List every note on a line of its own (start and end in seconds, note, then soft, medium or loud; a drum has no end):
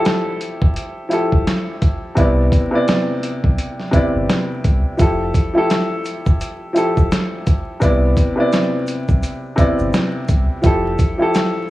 0.00 1.09 F3 medium
0.00 1.10 E4 medium
0.00 1.12 G4 medium
0.00 1.13 A4 loud
0.05 snare loud
0.05 closed hi-hat medium
0.41 closed hi-hat medium
0.62 0.75 F1 medium
0.62 kick medium
0.76 closed hi-hat medium
1.09 2.10 F3 medium
1.09 2.11 E4 medium
1.09 2.11 G4 medium
1.09 closed hi-hat medium
1.13 2.12 A4 medium
1.32 1.45 E1 medium
1.32 kick medium
1.47 snare loud
1.47 closed hi-hat medium
1.82 kick medium
1.82 closed hi-hat medium
2.15 2.49 C2 loud
2.15 2.68 C3 medium
2.15 2.69 B3 medium
2.15 2.69 E4 medium
2.15 kick loud
2.15 closed hi-hat medium
2.20 2.70 D5 medium
2.52 kick medium
2.52 closed hi-hat medium
2.71 3.86 C3 medium
2.71 3.86 B3 medium
2.71 3.87 E4 medium
2.75 3.88 D5 medium
2.88 snare loud
2.88 closed hi-hat medium
3.23 closed hi-hat medium
3.44 3.57 B1 medium
3.44 kick medium
3.58 closed hi-hat medium
3.80 snare soft
3.91 4.92 C3 medium
3.91 4.93 B3 medium
3.91 4.94 E4 medium
3.91 kick loud
3.91 closed hi-hat medium
3.96 4.95 D5 medium
4.15 4.27 G1 medium
4.30 snare loud
4.30 closed hi-hat loud
4.64 4.83 C2 medium
4.64 kick loud
4.64 closed hi-hat medium
4.97 5.31 F1 loud
4.97 5.50 F3 medium
4.97 5.51 E4 medium
4.97 5.51 G4 medium
4.97 kick loud
4.97 closed hi-hat medium
4.97 shaker medium
5.01 5.52 A4 medium
5.34 kick medium
5.34 closed hi-hat medium
5.34 shaker medium
5.53 6.68 F3 medium
5.53 6.69 E4 medium
5.53 6.69 G4 medium
5.58 6.70 A4 loud
5.70 snare loud
5.70 closed hi-hat medium
5.70 shaker medium
6.05 closed hi-hat medium
6.05 shaker soft
6.26 6.39 F1 medium
6.26 kick medium
6.26 shaker soft
6.41 closed hi-hat medium
6.41 shaker medium
6.73 7.74 F3 medium
6.73 7.75 E4 medium
6.73 7.76 G4 medium
6.73 closed hi-hat medium
6.73 shaker medium
6.77 7.77 A4 medium
6.97 7.10 E1 loud
6.97 kick medium
6.97 shaker soft
7.12 snare loud
7.12 closed hi-hat loud
7.12 shaker medium
7.47 kick loud
7.47 closed hi-hat medium
7.47 shaker medium
7.80 8.13 C2 loud
7.80 8.33 C3 medium
7.80 8.33 B3 medium
7.80 8.34 E4 medium
7.80 kick loud
7.80 closed hi-hat medium
7.80 shaker medium
7.84 8.35 D5 medium
8.17 kick medium
8.17 closed hi-hat medium
8.17 shaker medium
8.35 9.50 C3 medium
8.35 9.51 B3 medium
8.35 9.52 E4 medium
8.40 9.52 D5 medium
8.52 snare loud
8.52 closed hi-hat medium
8.52 shaker medium
8.87 closed hi-hat medium
8.87 shaker soft
9.08 9.22 B1 medium
9.08 kick medium
9.08 shaker soft
9.23 closed hi-hat medium
9.23 shaker medium
9.56 10.57 C3 medium
9.56 10.58 B3 medium
9.56 10.59 E4 medium
9.56 kick loud
9.56 closed hi-hat medium
9.56 shaker medium
9.60 10.59 D5 medium
9.79 9.92 G1 loud
9.79 shaker soft
9.94 snare loud
9.94 closed hi-hat loud
9.94 shaker medium
10.29 10.48 C2 medium
10.29 kick loud
10.29 closed hi-hat medium
10.29 shaker medium
10.62 10.96 F1 loud
10.62 11.15 F3 medium
10.62 11.16 E4 medium
10.62 11.16 G4 medium
10.62 kick loud
10.62 closed hi-hat medium
10.62 shaker medium
10.66 11.17 A4 medium
10.99 kick medium
10.99 closed hi-hat medium
10.99 shaker medium
11.18 11.70 F3 medium
11.18 11.70 E4 medium
11.18 11.70 G4 medium
11.22 11.70 A4 loud
11.35 snare loud
11.35 closed hi-hat medium
11.35 shaker medium